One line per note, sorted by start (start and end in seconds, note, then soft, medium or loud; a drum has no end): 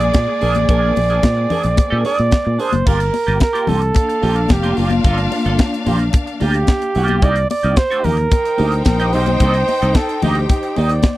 0.00 2.83 G#3 medium
0.00 0.37 A#3 medium
0.00 2.56 A#3 medium
0.00 2.56 G#4 medium
0.00 2.05 D5 loud
0.00 2.56 D5 medium
0.00 2.82 D5 medium
0.00 muted clean electric guitar stroke soft
0.00 closed hi-hat medium
0.14 0.26 A#2 loud
0.14 muted clean electric guitar stroke soft
0.14 kick loud
0.14 snare loud
0.14 closed hi-hat medium
0.14 high conga medium
0.28 muted clean electric guitar stroke soft
0.41 0.56 A#1 loud
0.41 2.85 C4 medium
0.41 0.58 D4 medium
0.41 0.55 G#4 medium
0.41 0.54 A#4 loud
0.41 open hi-hat medium
0.55 0.67 A1 medium
0.55 muted clean electric guitar stroke medium
0.55 closed hi-hat medium
0.55 high conga medium
0.69 0.91 A#1 loud
0.69 0.94 D4 medium
0.69 0.95 G#4 medium
0.69 0.95 A#4 medium
0.69 kick loud
0.69 closed hi-hat medium
0.96 1.19 A#1 loud
0.96 muted clean electric guitar stroke soft
0.96 open hi-hat medium
0.96 muted conga medium
1.10 1.23 D4 soft
1.10 1.23 G#4 medium
1.10 1.22 A#4 medium
1.10 closed hi-hat soft
1.23 1.46 A#2 loud
1.23 kick medium
1.23 snare loud
1.23 closed hi-hat medium
1.23 high conga medium
1.37 muted clean electric guitar stroke medium
1.50 1.66 D4 medium
1.50 1.63 G#4 medium
1.50 1.62 A#4 medium
1.50 open hi-hat medium
1.50 low conga medium
1.63 1.75 A#1 medium
1.63 muted clean electric guitar stroke soft
1.63 closed hi-hat medium
1.77 muted clean electric guitar stroke soft
1.77 kick loud
1.77 closed hi-hat medium
1.77 muted conga medium
1.90 2.03 A#2 loud
1.90 2.04 D4 medium
1.90 2.05 G#4 medium
1.90 2.05 A#4 medium
2.05 2.18 D4 medium
2.05 2.18 G#4 medium
2.05 2.17 A#4 medium
2.05 2.62 D5 loud
2.05 open hi-hat medium
2.05 muted conga soft
2.18 2.30 A#2 loud
2.18 muted clean electric guitar stroke soft
2.18 closed hi-hat medium
2.31 muted clean electric guitar stroke medium
2.31 kick loud
2.31 snare loud
2.31 closed hi-hat medium
2.31 high conga medium
2.45 2.57 A#2 loud
2.45 muted clean electric guitar stroke medium
2.59 2.75 D4 medium
2.59 2.72 G#4 medium
2.59 2.71 A#4 medium
2.59 2.89 C5 medium
2.59 open hi-hat medium
2.72 2.84 F#1 medium
2.72 muted clean electric guitar stroke medium
2.72 closed hi-hat medium
2.72 high conga medium
2.86 3.09 G1 loud
2.86 3.03 A#3 medium
2.86 3.00 F4 medium
2.86 2.99 G4 medium
2.86 3.42 A#4 loud
2.86 kick loud
2.86 crash medium
3.00 muted clean electric guitar stroke medium
3.00 closed hi-hat medium
3.12 muted clean electric guitar stroke medium
3.12 open hi-hat medium
3.12 muted conga medium
3.27 3.39 G1 loud
3.27 3.39 A#3 medium
3.27 3.39 F4 medium
3.27 3.39 G4 medium
3.27 closed hi-hat medium
3.40 3.70 A#4 loud
3.40 muted clean electric guitar stroke medium
3.40 kick loud
3.40 snare loud
3.40 closed hi-hat medium
3.40 high conga medium
3.53 3.66 A#3 medium
3.53 3.67 F4 medium
3.53 3.68 G4 loud
3.53 closed hi-hat medium
3.67 3.91 C2 medium
3.67 3.81 A#3 medium
3.67 3.81 F4 medium
3.67 3.79 G4 medium
3.67 4.53 A4 loud
3.67 open hi-hat medium
3.67 low conga medium
3.81 muted clean electric guitar stroke medium
3.81 closed hi-hat medium
3.95 7.18 A#3 loud
3.95 7.18 D4 medium
3.95 7.18 F5 loud
3.95 kick loud
3.95 closed hi-hat medium
3.95 muted conga medium
4.09 muted clean electric guitar stroke soft
4.09 closed hi-hat medium
4.22 4.45 A#1 loud
4.22 4.39 A#3 medium
4.22 4.36 F4 medium
4.22 4.35 G4 loud
4.22 open hi-hat medium
4.36 muted clean electric guitar stroke soft
4.36 closed hi-hat soft
4.48 4.72 F1 loud
4.48 4.80 G4 medium
4.48 muted clean electric guitar stroke soft
4.48 kick loud
4.48 snare loud
4.48 closed hi-hat medium
4.48 high conga medium
4.63 4.76 A#3 medium
4.63 4.77 F4 medium
4.63 4.78 G4 medium
4.63 closed hi-hat soft
4.77 5.00 F#1 loud
4.77 4.90 A#3 medium
4.77 4.91 F4 medium
4.77 6.14 F4 medium
4.77 4.90 G4 medium
4.77 open hi-hat medium
4.90 muted clean electric guitar stroke medium
4.90 closed hi-hat medium
4.90 high conga medium
5.04 5.27 G1 loud
5.04 5.21 A#3 medium
5.04 5.19 F4 loud
5.04 5.19 A4 loud
5.04 kick loud
5.04 closed hi-hat medium
5.18 muted clean electric guitar stroke soft
5.18 closed hi-hat soft
5.32 muted clean electric guitar stroke soft
5.32 open hi-hat medium
5.32 muted conga medium
5.46 5.57 G1 medium
5.46 5.59 A#3 medium
5.46 5.59 F4 medium
5.46 5.58 A4 medium
5.46 closed hi-hat soft
5.59 kick medium
5.59 snare loud
5.59 closed hi-hat medium
5.59 high conga medium
5.73 muted clean electric guitar stroke soft
5.73 closed hi-hat medium
5.86 6.08 A#1 medium
5.86 6.02 A#3 loud
5.86 5.99 F4 medium
5.86 5.98 G4 medium
5.86 open hi-hat medium
5.86 low conga medium
5.99 muted clean electric guitar stroke medium
5.99 closed hi-hat medium
6.13 muted clean electric guitar stroke soft
6.13 kick loud
6.13 closed hi-hat loud
6.13 muted conga medium
6.26 muted clean electric guitar stroke soft
6.26 closed hi-hat soft
6.40 6.63 D2 loud
6.40 6.57 A#3 medium
6.40 6.54 F4 medium
6.40 7.25 G4 medium
6.40 6.53 G4 loud
6.40 open hi-hat medium
6.40 muted conga soft
6.54 muted clean electric guitar stroke medium
6.54 closed hi-hat medium
6.67 muted clean electric guitar stroke soft
6.67 kick loud
6.67 snare loud
6.67 closed hi-hat medium
6.67 high conga medium
6.82 muted clean electric guitar stroke soft
6.82 closed hi-hat soft
6.95 7.23 B1 loud
6.95 7.10 A#3 medium
6.95 7.09 F4 medium
6.95 7.08 G4 medium
6.95 open hi-hat medium
7.08 7.21 A#3 medium
7.08 7.22 F4 medium
7.08 7.22 G4 medium
7.08 closed hi-hat medium
7.08 high conga medium
7.22 7.44 C2 loud
7.22 7.39 A#3 medium
7.22 7.36 D#4 medium
7.22 7.35 G4 medium
7.22 7.50 D5 loud
7.22 kick loud
7.22 closed hi-hat medium
7.36 muted clean electric guitar stroke medium
7.36 closed hi-hat medium
7.50 7.79 D5 loud
7.50 muted clean electric guitar stroke soft
7.50 open hi-hat medium
7.50 muted conga medium
7.63 7.75 C2 loud
7.63 7.75 A#3 medium
7.63 7.76 D#4 medium
7.63 7.76 G4 medium
7.63 closed hi-hat soft
7.76 8.06 C5 loud
7.76 muted clean electric guitar stroke soft
7.76 kick loud
7.76 snare loud
7.76 closed hi-hat medium
7.76 high conga medium
7.90 8.02 A#3 medium
7.90 8.03 D#4 medium
7.90 8.04 G4 medium
7.90 closed hi-hat medium
8.03 8.26 D#2 medium
8.03 8.17 A#3 medium
8.03 8.17 D#4 medium
8.03 8.17 G4 medium
8.03 8.85 A#4 loud
8.03 open hi-hat medium
8.03 low conga medium
8.17 muted clean electric guitar stroke medium
8.17 closed hi-hat medium
8.31 11.17 D#4 loud
8.31 11.17 C5 medium
8.31 11.17 G5 loud
8.31 kick loud
8.31 closed hi-hat medium
8.31 muted conga medium
8.44 muted clean electric guitar stroke soft
8.44 closed hi-hat soft
8.58 8.81 D2 loud
8.58 8.74 A#3 medium
8.58 8.72 D#4 medium
8.58 8.71 G4 medium
8.58 open hi-hat medium
8.72 muted clean electric guitar stroke medium
8.72 closed hi-hat medium
8.85 9.15 A#1 loud
8.85 9.15 A#4 medium
8.85 muted clean electric guitar stroke soft
8.85 kick loud
8.85 snare loud
8.85 closed hi-hat medium
8.85 high conga medium
9.00 9.12 A#3 medium
9.00 9.13 D#4 medium
9.00 9.14 G4 medium
9.00 closed hi-hat medium
9.13 9.36 B1 loud
9.13 9.26 A#3 medium
9.13 9.26 D#4 medium
9.13 9.26 G4 medium
9.13 9.96 C5 loud
9.13 open hi-hat medium
9.26 muted clean electric guitar stroke soft
9.26 closed hi-hat medium
9.26 high conga medium
9.40 9.62 C2 loud
9.40 9.57 A#3 medium
9.40 9.55 D#4 medium
9.40 9.54 A4 loud
9.40 kick loud
9.40 closed hi-hat medium
9.54 muted clean electric guitar stroke medium
9.54 closed hi-hat medium
9.68 muted clean electric guitar stroke soft
9.68 open hi-hat medium
9.68 muted conga medium
9.82 9.93 C2 medium
9.82 9.95 A#3 soft
9.82 9.94 D#4 medium
9.82 9.94 A4 medium
9.82 closed hi-hat medium
9.95 10.24 A4 loud
9.95 kick loud
9.95 snare loud
9.95 closed hi-hat medium
9.95 high conga medium
10.09 muted clean electric guitar stroke soft
10.09 closed hi-hat medium
10.22 10.45 D2 medium
10.22 10.38 A#3 medium
10.22 10.37 D#4 loud
10.22 10.79 G4 medium
10.22 10.35 G4 loud
10.22 open hi-hat medium
10.22 low conga medium
10.35 muted clean electric guitar stroke medium
10.35 closed hi-hat medium
10.49 muted clean electric guitar stroke soft
10.49 kick loud
10.49 closed hi-hat medium
10.49 muted conga medium
10.63 muted clean electric guitar stroke soft
10.63 closed hi-hat soft
10.76 10.99 D#2 loud
10.76 10.93 A#3 medium
10.76 10.91 D#4 loud
10.76 10.90 G4 medium
10.76 11.17 D5 medium
10.76 open hi-hat medium
10.76 muted conga soft
10.89 muted clean electric guitar stroke soft
10.89 closed hi-hat medium
11.02 muted clean electric guitar stroke soft
11.02 kick loud
11.02 snare loud
11.02 closed hi-hat medium
11.02 high conga medium